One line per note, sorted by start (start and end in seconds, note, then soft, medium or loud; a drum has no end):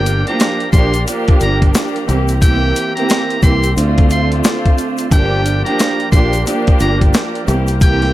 0.00 0.23 G1 loud
0.00 0.22 F3 loud
0.00 0.22 A#3 medium
0.00 0.22 D4 loud
0.00 0.22 G4 loud
0.00 3.73 G4 medium
0.00 2.06 D5 medium
0.00 2.06 F5 medium
0.00 0.23 G5 loud
0.00 3.73 A#5 medium
0.06 closed hi-hat medium
0.06 shaker medium
0.27 0.70 F3 loud
0.27 0.70 A#3 medium
0.27 0.70 D4 medium
0.27 0.70 G4 loud
0.27 0.71 A#5 medium
0.27 closed hi-hat soft
0.40 cross-stick loud
0.40 snare loud
0.40 closed hi-hat loud
0.40 shaker medium
0.60 closed hi-hat soft
0.72 1.04 A#1 medium
0.72 1.05 F3 loud
0.72 1.05 A#3 medium
0.72 1.05 D4 medium
0.72 1.05 G4 loud
0.72 1.03 C6 medium
0.72 kick loud
0.72 closed hi-hat medium
0.72 shaker medium
0.94 closed hi-hat medium
0.94 shaker medium
1.06 2.01 F3 loud
1.06 2.01 A#3 medium
1.06 2.02 D4 medium
1.06 2.02 G4 loud
1.06 closed hi-hat medium
1.06 shaker medium
1.28 kick loud
1.28 closed hi-hat soft
1.41 1.72 G1 medium
1.41 1.60 A#5 medium
1.41 closed hi-hat medium
1.41 shaker medium
1.62 kick medium
1.62 closed hi-hat soft
1.74 cross-stick medium
1.74 snare loud
1.74 closed hi-hat medium
1.74 shaker medium
1.96 closed hi-hat soft
2.08 2.72 C2 loud
2.08 2.40 E3 medium
2.08 2.40 A#3 medium
2.08 2.40 C4 medium
2.08 2.40 G4 medium
2.08 5.08 C5 medium
2.08 3.75 E5 medium
2.08 closed hi-hat medium
2.08 shaker medium
2.28 closed hi-hat medium
2.28 shaker medium
2.42 2.92 E3 medium
2.42 2.92 A#3 medium
2.42 2.92 C4 medium
2.42 2.92 G4 loud
2.42 2.93 G5 loud
2.42 kick loud
2.42 closed hi-hat medium
2.42 shaker medium
2.76 closed hi-hat medium
2.76 shaker medium
2.95 3.40 E3 loud
2.95 3.40 A#3 medium
2.95 3.40 C4 medium
2.95 3.40 G4 loud
2.95 3.40 A#5 medium
2.95 closed hi-hat soft
3.09 cross-stick loud
3.09 snare loud
3.09 closed hi-hat loud
3.09 shaker medium
3.30 closed hi-hat soft
3.43 3.74 C2 medium
3.43 3.74 E3 loud
3.43 3.75 A#3 medium
3.43 3.75 C4 medium
3.43 3.75 G4 loud
3.43 3.73 C6 medium
3.43 kick loud
3.43 closed hi-hat medium
3.43 shaker medium
3.63 closed hi-hat medium
3.63 shaker medium
3.76 4.40 D2 loud
3.76 5.03 D3 loud
3.76 5.03 A3 loud
3.76 5.03 C4 loud
3.76 5.03 F4 loud
3.76 7.44 F4 medium
3.76 5.10 D5 medium
3.76 5.11 A5 medium
3.76 closed hi-hat medium
3.76 shaker medium
3.98 kick loud
3.98 closed hi-hat soft
4.10 4.30 C6 medium
4.10 closed hi-hat medium
4.10 shaker soft
4.32 closed hi-hat soft
4.44 cross-stick medium
4.44 snare loud
4.44 closed hi-hat medium
4.44 shaker medium
4.66 kick medium
4.66 closed hi-hat soft
4.78 closed hi-hat medium
4.78 shaker medium
4.98 closed hi-hat medium
4.98 shaker medium
5.11 5.62 G1 loud
5.11 5.61 F3 loud
5.11 5.61 A#3 medium
5.11 5.61 D4 loud
5.11 5.61 G4 loud
5.11 8.13 A#4 medium
5.11 7.45 D5 medium
5.11 8.13 G5 medium
5.11 5.63 G5 loud
5.11 kick loud
5.11 closed hi-hat medium
5.11 shaker medium
5.46 closed hi-hat medium
5.46 shaker medium
5.65 6.09 F3 loud
5.65 6.09 A#3 medium
5.65 6.10 D4 medium
5.65 6.10 G4 loud
5.65 6.09 A#5 medium
5.65 closed hi-hat soft
5.79 cross-stick loud
5.79 snare loud
5.79 closed hi-hat loud
5.79 shaker medium
6.00 closed hi-hat soft
6.12 6.43 A#1 medium
6.12 6.44 F3 loud
6.12 6.44 A#3 medium
6.12 6.44 D4 medium
6.12 6.44 G4 loud
6.12 6.43 C6 medium
6.12 kick loud
6.12 closed hi-hat medium
6.12 shaker medium
6.33 closed hi-hat medium
6.33 shaker medium
6.45 7.41 F3 loud
6.45 7.41 A#3 medium
6.45 7.41 D4 loud
6.45 7.41 G4 loud
6.45 closed hi-hat medium
6.45 shaker medium
6.67 kick loud
6.67 closed hi-hat soft
6.80 7.11 G1 medium
6.80 6.99 A#5 medium
6.80 closed hi-hat medium
6.80 shaker medium
7.01 kick medium
7.01 closed hi-hat soft
7.14 cross-stick medium
7.14 snare loud
7.14 closed hi-hat medium
7.14 shaker medium
7.35 closed hi-hat soft
7.47 8.11 C2 loud
7.47 7.79 E3 medium
7.47 7.79 A#3 medium
7.47 7.79 C4 medium
7.47 8.13 E4 medium
7.47 7.79 G4 medium
7.47 8.13 C5 medium
7.47 closed hi-hat medium
7.47 shaker medium
7.67 closed hi-hat medium
7.67 shaker soft
7.81 8.13 E3 medium
7.81 8.13 A#3 medium
7.81 8.13 C4 medium
7.81 8.13 G4 loud
7.81 8.13 G5 loud
7.81 kick loud
7.81 closed hi-hat medium
7.81 shaker medium
8.02 snare soft
8.02 closed hi-hat soft